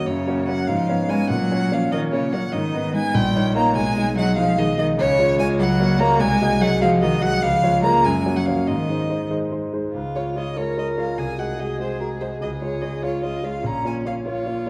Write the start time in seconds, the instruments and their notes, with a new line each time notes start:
0.06 grand piano F#2, cello C#3, violin C#5
0.27 grand piano A#3 F#4 C#5
0.47 cello F#3, grand piano A#3 F#4 C#5, violin F#5
0.67 grand piano G#2, cello F3, violin F5
0.89 grand piano B3 C#4 C#5
1.09 cello G#3, grand piano B3 C#4 C#5, violin G#5
1.30 grand piano A#2, cello F#3, violin F#5
1.51 grand piano A#3 C#4 C#5
1.71 cello F3, grand piano A#3 C#4 C#5, violin F5
1.92 cello D#3, grand piano A#3 C#4 C#5, violin D#5
2.12 cello C#3, grand piano A#3 C#4 C#5, violin C#5
2.32 cello F#3, grand piano A#3 C#4 C#5, violin F#5
2.52 grand piano G#2, cello D#3, violin D#5
2.74 grand piano B3 D#4 B4
2.93 cello G#3, grand piano B3 D#4 B4, violin G#5
3.14 grand piano A#1, cello G3, violin G5
3.35 grand piano A#3 D#4 C#5
3.56 cello A#3, grand piano A#3 D#4 C#5, violin A#5
3.76 grand piano B1, cello G#3, violin G#5
3.96 grand piano G#3 D#4 D#5
4.17 cello F#3, grand piano G#3 D#4 D#5, violin F#5
4.37 cello F3, grand piano G#3 D#4 D#5, violin F5
4.58 cello D#3, grand piano G#3 D#4 D#5, violin D#5
4.78 cello D#3, grand piano G#3 D#4 D#5, violin D#5
4.98 grand piano C#2, cello C#3, violin C#5
5.19 grand piano G#3 F4 C#5
5.39 cello G#3, grand piano G#3 F4 C#5, violin G#5
5.59 grand piano C#2, cello F#3, violin F#5
5.80 grand piano A#3 F#4 C#5
6.00 cello A#3, grand piano A#3 F#4 C#5, violin A#5
6.20 grand piano C2, cello G#3, violin G#5
6.41 grand piano G#3 F#4 D#5
6.61 cello F#3, grand piano G#3 F#4 D#5, violin F#5
6.81 cello F3, grand piano G#3 F#4 D#5, violin F5
7.02 cello D#3, grand piano G#3 F#4 D#5, violin D#5
7.22 cello F#3, grand piano G#3 F#4 D#5, violin F#5
7.43 grand piano C#2, cello F3, violin F5
7.63 grand piano G#3 F4 C#5
7.83 grand piano G#3 F4 C#5, cello A#3, violin A#5
8.04 grand piano F#2, cello G#3, violin G#5
8.26 grand piano A#3 F#4 C#5
8.36 cello F#3, violin F#5
8.46 cello F3, grand piano A#3 F#4 C#5, violin F5
8.67 grand piano G#2, cello D#3, violin D#5
8.89 grand piano G#3 D#4 C5
9.09 grand piano G#3 D#4 C5
9.30 grand piano G#3 D#4 C5
9.52 grand piano G#3 D#4 C5
9.73 grand piano G#3 D#4 C5
9.93 grand piano C#2, cello F4
10.15 grand piano G#3 F4 C#5, violin C#5
10.36 grand piano G#3 F4 C#5, violin D#5
10.56 grand piano G#3 F4 C#5, cello A#4, violin C#5
10.77 grand piano G#3 F4 C#5, violin D#5
10.97 grand piano G#3 F4 C#5, violin F5
11.18 grand piano C2, cello G#4, violin G#5
11.38 grand piano G#3 F#4 D#5, violin F#5
11.59 grand piano G#3 F#4 D#5, violin D#5
11.80 grand piano G#3 F#4 D#5, violin C5
12.00 grand piano G#3 F#4 D#5, violin A#4
12.21 grand piano G#3 F#4 D#5, violin C5
12.41 grand piano C#2, cello G#4, violin D#5
12.61 grand piano G#3 F4 C#5, violin C#5
12.82 grand piano G#3 F4 C#5, violin D#5
13.03 grand piano G#3 F4 C#5, cello F4, violin C#5
13.23 grand piano G#3 F4 C#5, violin D#5
13.43 grand piano G#3 F4 C#5, violin F5
13.64 grand piano A#1, cello C#4, violin A#5
13.84 grand piano A#3 F4 C#5, violin G#5
14.05 grand piano A#3 F4 C#5, violin F5
14.25 grand piano A#3 F4 C#5, cello F4, violin C#5
14.46 grand piano A#3 F4 C#5
14.66 grand piano A#3 F4